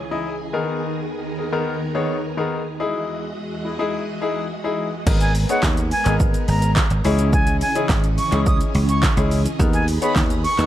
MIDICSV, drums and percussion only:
0, 0, Header, 1, 2, 480
1, 0, Start_track
1, 0, Key_signature, 5, "minor"
1, 0, Tempo, 566038
1, 457, Time_signature, 4, 2, 24, 8
1, 9041, End_track
2, 0, Start_track
2, 0, Title_t, "Drums"
2, 4296, Note_on_c, 9, 36, 105
2, 4296, Note_on_c, 9, 49, 105
2, 4296, Note_on_c, 9, 82, 76
2, 4381, Note_off_c, 9, 36, 0
2, 4381, Note_off_c, 9, 49, 0
2, 4381, Note_off_c, 9, 82, 0
2, 4414, Note_on_c, 9, 42, 55
2, 4414, Note_on_c, 9, 82, 53
2, 4499, Note_off_c, 9, 42, 0
2, 4499, Note_off_c, 9, 82, 0
2, 4535, Note_on_c, 9, 46, 90
2, 4535, Note_on_c, 9, 82, 62
2, 4620, Note_off_c, 9, 46, 0
2, 4620, Note_off_c, 9, 82, 0
2, 4657, Note_on_c, 9, 42, 73
2, 4657, Note_on_c, 9, 82, 74
2, 4742, Note_off_c, 9, 42, 0
2, 4742, Note_off_c, 9, 82, 0
2, 4774, Note_on_c, 9, 36, 115
2, 4775, Note_on_c, 9, 39, 126
2, 4776, Note_on_c, 9, 82, 84
2, 4785, Note_on_c, 9, 38, 98
2, 4859, Note_off_c, 9, 36, 0
2, 4860, Note_off_c, 9, 39, 0
2, 4860, Note_off_c, 9, 82, 0
2, 4870, Note_off_c, 9, 38, 0
2, 4896, Note_on_c, 9, 42, 57
2, 4896, Note_on_c, 9, 82, 54
2, 4980, Note_off_c, 9, 42, 0
2, 4980, Note_off_c, 9, 82, 0
2, 5015, Note_on_c, 9, 46, 86
2, 5015, Note_on_c, 9, 82, 64
2, 5099, Note_off_c, 9, 46, 0
2, 5099, Note_off_c, 9, 82, 0
2, 5135, Note_on_c, 9, 39, 69
2, 5136, Note_on_c, 9, 42, 75
2, 5136, Note_on_c, 9, 82, 78
2, 5220, Note_off_c, 9, 39, 0
2, 5221, Note_off_c, 9, 42, 0
2, 5221, Note_off_c, 9, 82, 0
2, 5255, Note_on_c, 9, 82, 88
2, 5258, Note_on_c, 9, 36, 120
2, 5340, Note_off_c, 9, 82, 0
2, 5343, Note_off_c, 9, 36, 0
2, 5377, Note_on_c, 9, 42, 57
2, 5377, Note_on_c, 9, 82, 56
2, 5462, Note_off_c, 9, 42, 0
2, 5462, Note_off_c, 9, 82, 0
2, 5495, Note_on_c, 9, 46, 79
2, 5495, Note_on_c, 9, 82, 58
2, 5580, Note_off_c, 9, 46, 0
2, 5580, Note_off_c, 9, 82, 0
2, 5614, Note_on_c, 9, 42, 72
2, 5614, Note_on_c, 9, 82, 70
2, 5699, Note_off_c, 9, 42, 0
2, 5699, Note_off_c, 9, 82, 0
2, 5734, Note_on_c, 9, 82, 72
2, 5735, Note_on_c, 9, 39, 113
2, 5737, Note_on_c, 9, 36, 120
2, 5745, Note_on_c, 9, 38, 89
2, 5819, Note_off_c, 9, 82, 0
2, 5820, Note_off_c, 9, 39, 0
2, 5822, Note_off_c, 9, 36, 0
2, 5830, Note_off_c, 9, 38, 0
2, 5854, Note_on_c, 9, 42, 64
2, 5854, Note_on_c, 9, 82, 62
2, 5939, Note_off_c, 9, 42, 0
2, 5939, Note_off_c, 9, 82, 0
2, 5974, Note_on_c, 9, 46, 84
2, 5974, Note_on_c, 9, 82, 61
2, 6059, Note_off_c, 9, 46, 0
2, 6059, Note_off_c, 9, 82, 0
2, 6094, Note_on_c, 9, 42, 75
2, 6094, Note_on_c, 9, 82, 78
2, 6179, Note_off_c, 9, 42, 0
2, 6179, Note_off_c, 9, 82, 0
2, 6214, Note_on_c, 9, 82, 76
2, 6216, Note_on_c, 9, 36, 109
2, 6299, Note_off_c, 9, 82, 0
2, 6301, Note_off_c, 9, 36, 0
2, 6332, Note_on_c, 9, 42, 52
2, 6332, Note_on_c, 9, 82, 53
2, 6417, Note_off_c, 9, 42, 0
2, 6417, Note_off_c, 9, 82, 0
2, 6454, Note_on_c, 9, 46, 88
2, 6454, Note_on_c, 9, 82, 63
2, 6539, Note_off_c, 9, 46, 0
2, 6539, Note_off_c, 9, 82, 0
2, 6576, Note_on_c, 9, 42, 74
2, 6576, Note_on_c, 9, 82, 70
2, 6660, Note_off_c, 9, 42, 0
2, 6660, Note_off_c, 9, 82, 0
2, 6694, Note_on_c, 9, 36, 119
2, 6695, Note_on_c, 9, 39, 124
2, 6695, Note_on_c, 9, 82, 88
2, 6705, Note_on_c, 9, 38, 99
2, 6778, Note_off_c, 9, 36, 0
2, 6780, Note_off_c, 9, 39, 0
2, 6780, Note_off_c, 9, 82, 0
2, 6789, Note_off_c, 9, 38, 0
2, 6815, Note_on_c, 9, 42, 55
2, 6815, Note_on_c, 9, 82, 57
2, 6900, Note_off_c, 9, 42, 0
2, 6900, Note_off_c, 9, 82, 0
2, 6936, Note_on_c, 9, 46, 88
2, 6936, Note_on_c, 9, 82, 66
2, 7021, Note_off_c, 9, 46, 0
2, 7021, Note_off_c, 9, 82, 0
2, 7057, Note_on_c, 9, 39, 72
2, 7058, Note_on_c, 9, 42, 78
2, 7058, Note_on_c, 9, 82, 75
2, 7142, Note_off_c, 9, 39, 0
2, 7143, Note_off_c, 9, 42, 0
2, 7143, Note_off_c, 9, 82, 0
2, 7176, Note_on_c, 9, 82, 83
2, 7178, Note_on_c, 9, 36, 127
2, 7260, Note_off_c, 9, 82, 0
2, 7263, Note_off_c, 9, 36, 0
2, 7298, Note_on_c, 9, 42, 55
2, 7298, Note_on_c, 9, 82, 55
2, 7383, Note_off_c, 9, 42, 0
2, 7383, Note_off_c, 9, 82, 0
2, 7417, Note_on_c, 9, 46, 82
2, 7417, Note_on_c, 9, 82, 53
2, 7502, Note_off_c, 9, 46, 0
2, 7502, Note_off_c, 9, 82, 0
2, 7537, Note_on_c, 9, 42, 71
2, 7537, Note_on_c, 9, 82, 70
2, 7621, Note_off_c, 9, 42, 0
2, 7621, Note_off_c, 9, 82, 0
2, 7657, Note_on_c, 9, 82, 75
2, 7658, Note_on_c, 9, 36, 124
2, 7658, Note_on_c, 9, 39, 112
2, 7668, Note_on_c, 9, 38, 93
2, 7742, Note_off_c, 9, 82, 0
2, 7743, Note_off_c, 9, 36, 0
2, 7743, Note_off_c, 9, 39, 0
2, 7753, Note_off_c, 9, 38, 0
2, 7777, Note_on_c, 9, 42, 62
2, 7777, Note_on_c, 9, 82, 62
2, 7862, Note_off_c, 9, 42, 0
2, 7862, Note_off_c, 9, 82, 0
2, 7898, Note_on_c, 9, 46, 85
2, 7898, Note_on_c, 9, 82, 61
2, 7983, Note_off_c, 9, 46, 0
2, 7983, Note_off_c, 9, 82, 0
2, 8019, Note_on_c, 9, 42, 82
2, 8019, Note_on_c, 9, 82, 80
2, 8103, Note_off_c, 9, 42, 0
2, 8103, Note_off_c, 9, 82, 0
2, 8137, Note_on_c, 9, 36, 110
2, 8138, Note_on_c, 9, 82, 77
2, 8221, Note_off_c, 9, 36, 0
2, 8222, Note_off_c, 9, 82, 0
2, 8254, Note_on_c, 9, 42, 55
2, 8254, Note_on_c, 9, 82, 51
2, 8339, Note_off_c, 9, 42, 0
2, 8339, Note_off_c, 9, 82, 0
2, 8377, Note_on_c, 9, 46, 89
2, 8377, Note_on_c, 9, 82, 64
2, 8462, Note_off_c, 9, 46, 0
2, 8462, Note_off_c, 9, 82, 0
2, 8496, Note_on_c, 9, 42, 73
2, 8496, Note_on_c, 9, 82, 75
2, 8581, Note_off_c, 9, 42, 0
2, 8581, Note_off_c, 9, 82, 0
2, 8614, Note_on_c, 9, 36, 113
2, 8616, Note_on_c, 9, 39, 118
2, 8616, Note_on_c, 9, 82, 86
2, 8626, Note_on_c, 9, 38, 98
2, 8699, Note_off_c, 9, 36, 0
2, 8701, Note_off_c, 9, 39, 0
2, 8701, Note_off_c, 9, 82, 0
2, 8710, Note_off_c, 9, 38, 0
2, 8737, Note_on_c, 9, 42, 56
2, 8737, Note_on_c, 9, 82, 55
2, 8822, Note_off_c, 9, 42, 0
2, 8822, Note_off_c, 9, 82, 0
2, 8857, Note_on_c, 9, 46, 89
2, 8857, Note_on_c, 9, 82, 63
2, 8942, Note_off_c, 9, 46, 0
2, 8942, Note_off_c, 9, 82, 0
2, 8978, Note_on_c, 9, 39, 72
2, 8979, Note_on_c, 9, 42, 75
2, 8979, Note_on_c, 9, 82, 77
2, 9041, Note_off_c, 9, 39, 0
2, 9041, Note_off_c, 9, 42, 0
2, 9041, Note_off_c, 9, 82, 0
2, 9041, End_track
0, 0, End_of_file